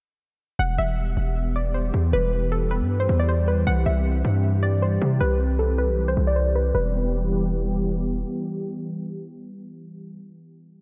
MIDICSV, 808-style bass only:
0, 0, Header, 1, 2, 480
1, 0, Start_track
1, 0, Key_signature, 1, "minor"
1, 0, Tempo, 384615
1, 740, Time_signature, 4, 2, 24, 8
1, 13501, End_track
2, 0, Start_track
2, 0, Title_t, "808-style bass"
2, 0, Program_c, 0, 38
2, 739, Note_on_c, 0, 28, 110
2, 970, Note_off_c, 0, 28, 0
2, 979, Note_on_c, 0, 28, 100
2, 1440, Note_off_c, 0, 28, 0
2, 1459, Note_on_c, 0, 28, 103
2, 2381, Note_off_c, 0, 28, 0
2, 2419, Note_on_c, 0, 40, 100
2, 2650, Note_off_c, 0, 40, 0
2, 2659, Note_on_c, 0, 28, 109
2, 3505, Note_on_c, 0, 43, 97
2, 3524, Note_off_c, 0, 28, 0
2, 3841, Note_off_c, 0, 43, 0
2, 3858, Note_on_c, 0, 40, 103
2, 4550, Note_off_c, 0, 40, 0
2, 4579, Note_on_c, 0, 36, 110
2, 4810, Note_off_c, 0, 36, 0
2, 4818, Note_on_c, 0, 36, 96
2, 5280, Note_off_c, 0, 36, 0
2, 5299, Note_on_c, 0, 43, 105
2, 6221, Note_off_c, 0, 43, 0
2, 6259, Note_on_c, 0, 48, 98
2, 6490, Note_off_c, 0, 48, 0
2, 6499, Note_on_c, 0, 36, 108
2, 7347, Note_on_c, 0, 35, 97
2, 7366, Note_off_c, 0, 36, 0
2, 7523, Note_on_c, 0, 36, 97
2, 7542, Note_off_c, 0, 35, 0
2, 7691, Note_off_c, 0, 36, 0
2, 7700, Note_on_c, 0, 36, 104
2, 8391, Note_off_c, 0, 36, 0
2, 8419, Note_on_c, 0, 28, 108
2, 10289, Note_off_c, 0, 28, 0
2, 13501, End_track
0, 0, End_of_file